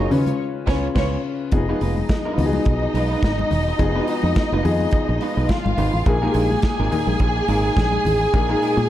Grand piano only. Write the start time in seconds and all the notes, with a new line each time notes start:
Already playing: F#3 C#4 F4 G#4 A#4
0.10 C#3 C#4 D#4 B4
0.18 F4
0.67 C#3 C#4 B4
0.74 F4
0.95 C#3 C#4 F4 B4
1.52 F3 B3 D#4 G#4
1.68 F3 B3 D#4 G#4
2.37 F3 B3 D#4 F#4
2.46 G#4
3.78 F3 B3 D#4 G#4
3.94 F3 B3 D#4 F#4
4.02 G#4
4.63 F3 B3 D#4 G#4
6.06 A#2 A#3 D#4 G#4
6.21 A#2 A#3 D#4 G4
6.30 G#4
6.91 A#2 A#3 D#4 G#4
8.33 A#2 A#3 D#4 G#4
8.48 A#2 A#3 D#4 G#4